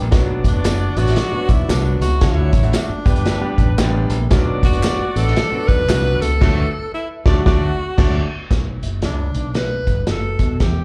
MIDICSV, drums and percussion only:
0, 0, Header, 1, 2, 480
1, 0, Start_track
1, 0, Tempo, 524017
1, 117, Time_signature, 4, 2, 24, 8
1, 9933, End_track
2, 0, Start_track
2, 0, Title_t, "Drums"
2, 22, Note_on_c, 9, 63, 49
2, 109, Note_on_c, 9, 42, 101
2, 113, Note_off_c, 9, 63, 0
2, 113, Note_on_c, 9, 38, 122
2, 115, Note_on_c, 9, 36, 107
2, 121, Note_on_c, 9, 54, 48
2, 137, Note_on_c, 9, 62, 54
2, 201, Note_off_c, 9, 42, 0
2, 204, Note_off_c, 9, 38, 0
2, 206, Note_off_c, 9, 36, 0
2, 213, Note_off_c, 9, 54, 0
2, 229, Note_off_c, 9, 62, 0
2, 406, Note_on_c, 9, 36, 85
2, 407, Note_on_c, 9, 42, 75
2, 411, Note_on_c, 9, 54, 45
2, 419, Note_on_c, 9, 62, 54
2, 498, Note_off_c, 9, 36, 0
2, 499, Note_off_c, 9, 42, 0
2, 503, Note_off_c, 9, 54, 0
2, 511, Note_off_c, 9, 62, 0
2, 590, Note_on_c, 9, 42, 104
2, 596, Note_on_c, 9, 38, 115
2, 599, Note_on_c, 9, 63, 77
2, 601, Note_on_c, 9, 39, 93
2, 601, Note_on_c, 9, 54, 79
2, 681, Note_off_c, 9, 42, 0
2, 687, Note_off_c, 9, 38, 0
2, 691, Note_off_c, 9, 63, 0
2, 692, Note_off_c, 9, 39, 0
2, 692, Note_off_c, 9, 54, 0
2, 884, Note_on_c, 9, 42, 69
2, 902, Note_on_c, 9, 54, 54
2, 976, Note_off_c, 9, 42, 0
2, 983, Note_on_c, 9, 38, 40
2, 983, Note_on_c, 9, 42, 56
2, 994, Note_off_c, 9, 54, 0
2, 1063, Note_off_c, 9, 42, 0
2, 1063, Note_on_c, 9, 42, 93
2, 1070, Note_off_c, 9, 38, 0
2, 1070, Note_on_c, 9, 38, 114
2, 1082, Note_on_c, 9, 62, 51
2, 1092, Note_on_c, 9, 54, 46
2, 1155, Note_off_c, 9, 42, 0
2, 1162, Note_off_c, 9, 38, 0
2, 1174, Note_off_c, 9, 62, 0
2, 1184, Note_off_c, 9, 54, 0
2, 1361, Note_on_c, 9, 42, 59
2, 1364, Note_on_c, 9, 36, 91
2, 1372, Note_on_c, 9, 54, 44
2, 1453, Note_off_c, 9, 42, 0
2, 1455, Note_off_c, 9, 36, 0
2, 1463, Note_off_c, 9, 54, 0
2, 1555, Note_on_c, 9, 42, 90
2, 1557, Note_on_c, 9, 38, 127
2, 1557, Note_on_c, 9, 39, 101
2, 1557, Note_on_c, 9, 54, 108
2, 1558, Note_on_c, 9, 63, 74
2, 1647, Note_off_c, 9, 42, 0
2, 1648, Note_off_c, 9, 38, 0
2, 1649, Note_off_c, 9, 39, 0
2, 1649, Note_off_c, 9, 54, 0
2, 1650, Note_off_c, 9, 63, 0
2, 1845, Note_on_c, 9, 42, 84
2, 1853, Note_on_c, 9, 54, 72
2, 1857, Note_on_c, 9, 63, 62
2, 1927, Note_off_c, 9, 63, 0
2, 1927, Note_on_c, 9, 63, 50
2, 1937, Note_off_c, 9, 42, 0
2, 1944, Note_off_c, 9, 54, 0
2, 2018, Note_off_c, 9, 63, 0
2, 2025, Note_on_c, 9, 42, 107
2, 2028, Note_on_c, 9, 38, 111
2, 2029, Note_on_c, 9, 36, 100
2, 2037, Note_on_c, 9, 62, 49
2, 2044, Note_on_c, 9, 54, 54
2, 2117, Note_off_c, 9, 42, 0
2, 2120, Note_off_c, 9, 38, 0
2, 2121, Note_off_c, 9, 36, 0
2, 2129, Note_off_c, 9, 62, 0
2, 2135, Note_off_c, 9, 54, 0
2, 2313, Note_on_c, 9, 42, 78
2, 2317, Note_on_c, 9, 36, 87
2, 2328, Note_on_c, 9, 62, 53
2, 2336, Note_on_c, 9, 54, 43
2, 2405, Note_off_c, 9, 42, 0
2, 2406, Note_on_c, 9, 42, 47
2, 2409, Note_off_c, 9, 36, 0
2, 2419, Note_off_c, 9, 62, 0
2, 2427, Note_off_c, 9, 54, 0
2, 2498, Note_off_c, 9, 42, 0
2, 2501, Note_on_c, 9, 42, 104
2, 2507, Note_on_c, 9, 38, 114
2, 2512, Note_on_c, 9, 63, 81
2, 2513, Note_on_c, 9, 39, 94
2, 2513, Note_on_c, 9, 54, 94
2, 2593, Note_off_c, 9, 42, 0
2, 2599, Note_off_c, 9, 38, 0
2, 2604, Note_off_c, 9, 39, 0
2, 2604, Note_off_c, 9, 54, 0
2, 2604, Note_off_c, 9, 63, 0
2, 2799, Note_on_c, 9, 42, 81
2, 2801, Note_on_c, 9, 36, 110
2, 2821, Note_on_c, 9, 54, 56
2, 2891, Note_off_c, 9, 42, 0
2, 2891, Note_on_c, 9, 42, 51
2, 2892, Note_off_c, 9, 36, 0
2, 2913, Note_off_c, 9, 54, 0
2, 2981, Note_off_c, 9, 42, 0
2, 2981, Note_on_c, 9, 42, 90
2, 2988, Note_on_c, 9, 38, 123
2, 2990, Note_on_c, 9, 62, 46
2, 2998, Note_on_c, 9, 54, 46
2, 3073, Note_off_c, 9, 42, 0
2, 3080, Note_off_c, 9, 38, 0
2, 3082, Note_off_c, 9, 62, 0
2, 3090, Note_off_c, 9, 54, 0
2, 3279, Note_on_c, 9, 36, 89
2, 3280, Note_on_c, 9, 42, 57
2, 3287, Note_on_c, 9, 64, 62
2, 3371, Note_off_c, 9, 36, 0
2, 3372, Note_off_c, 9, 42, 0
2, 3379, Note_off_c, 9, 64, 0
2, 3463, Note_on_c, 9, 42, 93
2, 3464, Note_on_c, 9, 38, 113
2, 3467, Note_on_c, 9, 39, 100
2, 3467, Note_on_c, 9, 54, 96
2, 3474, Note_on_c, 9, 63, 70
2, 3554, Note_off_c, 9, 42, 0
2, 3556, Note_off_c, 9, 38, 0
2, 3559, Note_off_c, 9, 39, 0
2, 3559, Note_off_c, 9, 54, 0
2, 3566, Note_off_c, 9, 63, 0
2, 3753, Note_on_c, 9, 42, 79
2, 3769, Note_on_c, 9, 54, 68
2, 3771, Note_on_c, 9, 63, 60
2, 3845, Note_off_c, 9, 42, 0
2, 3850, Note_off_c, 9, 63, 0
2, 3850, Note_on_c, 9, 63, 54
2, 3861, Note_off_c, 9, 54, 0
2, 3942, Note_off_c, 9, 63, 0
2, 3945, Note_on_c, 9, 42, 111
2, 3948, Note_on_c, 9, 38, 122
2, 3950, Note_on_c, 9, 36, 105
2, 3963, Note_on_c, 9, 62, 52
2, 3964, Note_on_c, 9, 54, 49
2, 4036, Note_off_c, 9, 42, 0
2, 4040, Note_off_c, 9, 38, 0
2, 4041, Note_off_c, 9, 36, 0
2, 4055, Note_off_c, 9, 62, 0
2, 4056, Note_off_c, 9, 54, 0
2, 4240, Note_on_c, 9, 36, 91
2, 4241, Note_on_c, 9, 42, 85
2, 4247, Note_on_c, 9, 54, 42
2, 4251, Note_on_c, 9, 62, 57
2, 4331, Note_off_c, 9, 42, 0
2, 4331, Note_on_c, 9, 42, 53
2, 4332, Note_off_c, 9, 36, 0
2, 4338, Note_off_c, 9, 54, 0
2, 4342, Note_off_c, 9, 62, 0
2, 4423, Note_off_c, 9, 42, 0
2, 4424, Note_on_c, 9, 39, 92
2, 4424, Note_on_c, 9, 54, 87
2, 4430, Note_on_c, 9, 42, 94
2, 4430, Note_on_c, 9, 63, 68
2, 4436, Note_on_c, 9, 38, 124
2, 4515, Note_off_c, 9, 39, 0
2, 4515, Note_off_c, 9, 54, 0
2, 4521, Note_off_c, 9, 42, 0
2, 4522, Note_off_c, 9, 63, 0
2, 4527, Note_off_c, 9, 38, 0
2, 4728, Note_on_c, 9, 54, 51
2, 4729, Note_on_c, 9, 42, 85
2, 4820, Note_off_c, 9, 42, 0
2, 4820, Note_off_c, 9, 54, 0
2, 4829, Note_on_c, 9, 38, 37
2, 4913, Note_on_c, 9, 42, 89
2, 4920, Note_off_c, 9, 38, 0
2, 4920, Note_on_c, 9, 38, 120
2, 4921, Note_on_c, 9, 54, 41
2, 4922, Note_on_c, 9, 62, 45
2, 5004, Note_off_c, 9, 42, 0
2, 5012, Note_off_c, 9, 38, 0
2, 5013, Note_off_c, 9, 54, 0
2, 5013, Note_off_c, 9, 62, 0
2, 5208, Note_on_c, 9, 36, 83
2, 5210, Note_on_c, 9, 54, 39
2, 5214, Note_on_c, 9, 42, 56
2, 5220, Note_on_c, 9, 62, 27
2, 5300, Note_off_c, 9, 36, 0
2, 5301, Note_off_c, 9, 54, 0
2, 5305, Note_off_c, 9, 42, 0
2, 5312, Note_off_c, 9, 62, 0
2, 5397, Note_on_c, 9, 39, 105
2, 5397, Note_on_c, 9, 54, 99
2, 5399, Note_on_c, 9, 42, 106
2, 5401, Note_on_c, 9, 38, 122
2, 5408, Note_on_c, 9, 63, 72
2, 5488, Note_off_c, 9, 39, 0
2, 5488, Note_off_c, 9, 54, 0
2, 5491, Note_off_c, 9, 42, 0
2, 5493, Note_off_c, 9, 38, 0
2, 5499, Note_off_c, 9, 63, 0
2, 5697, Note_on_c, 9, 42, 88
2, 5698, Note_on_c, 9, 54, 63
2, 5704, Note_on_c, 9, 63, 63
2, 5777, Note_off_c, 9, 63, 0
2, 5777, Note_on_c, 9, 63, 52
2, 5789, Note_off_c, 9, 42, 0
2, 5789, Note_off_c, 9, 54, 0
2, 5868, Note_off_c, 9, 63, 0
2, 5876, Note_on_c, 9, 36, 116
2, 5877, Note_on_c, 9, 49, 86
2, 5879, Note_on_c, 9, 38, 115
2, 5968, Note_off_c, 9, 36, 0
2, 5968, Note_off_c, 9, 49, 0
2, 5971, Note_off_c, 9, 38, 0
2, 6646, Note_on_c, 9, 38, 107
2, 6647, Note_on_c, 9, 36, 118
2, 6737, Note_off_c, 9, 38, 0
2, 6739, Note_off_c, 9, 36, 0
2, 6833, Note_on_c, 9, 36, 127
2, 6833, Note_on_c, 9, 38, 117
2, 6925, Note_off_c, 9, 36, 0
2, 6925, Note_off_c, 9, 38, 0
2, 7312, Note_on_c, 9, 36, 114
2, 7313, Note_on_c, 9, 49, 90
2, 7316, Note_on_c, 9, 38, 112
2, 7403, Note_off_c, 9, 36, 0
2, 7405, Note_off_c, 9, 49, 0
2, 7408, Note_off_c, 9, 38, 0
2, 7792, Note_on_c, 9, 36, 99
2, 7793, Note_on_c, 9, 42, 102
2, 7797, Note_on_c, 9, 38, 108
2, 7883, Note_off_c, 9, 36, 0
2, 7885, Note_off_c, 9, 42, 0
2, 7888, Note_off_c, 9, 38, 0
2, 8087, Note_on_c, 9, 42, 72
2, 8179, Note_off_c, 9, 42, 0
2, 8262, Note_on_c, 9, 42, 90
2, 8268, Note_on_c, 9, 38, 99
2, 8353, Note_off_c, 9, 42, 0
2, 8359, Note_off_c, 9, 38, 0
2, 8559, Note_on_c, 9, 42, 71
2, 8651, Note_off_c, 9, 42, 0
2, 8742, Note_on_c, 9, 42, 85
2, 8749, Note_on_c, 9, 38, 113
2, 8834, Note_off_c, 9, 42, 0
2, 8841, Note_off_c, 9, 38, 0
2, 9041, Note_on_c, 9, 42, 48
2, 9042, Note_on_c, 9, 36, 67
2, 9133, Note_off_c, 9, 36, 0
2, 9133, Note_off_c, 9, 42, 0
2, 9222, Note_on_c, 9, 42, 91
2, 9224, Note_on_c, 9, 38, 116
2, 9314, Note_off_c, 9, 42, 0
2, 9316, Note_off_c, 9, 38, 0
2, 9518, Note_on_c, 9, 42, 73
2, 9520, Note_on_c, 9, 36, 80
2, 9609, Note_off_c, 9, 42, 0
2, 9612, Note_off_c, 9, 36, 0
2, 9710, Note_on_c, 9, 42, 99
2, 9712, Note_on_c, 9, 36, 90
2, 9713, Note_on_c, 9, 38, 108
2, 9801, Note_off_c, 9, 42, 0
2, 9804, Note_off_c, 9, 36, 0
2, 9805, Note_off_c, 9, 38, 0
2, 9933, End_track
0, 0, End_of_file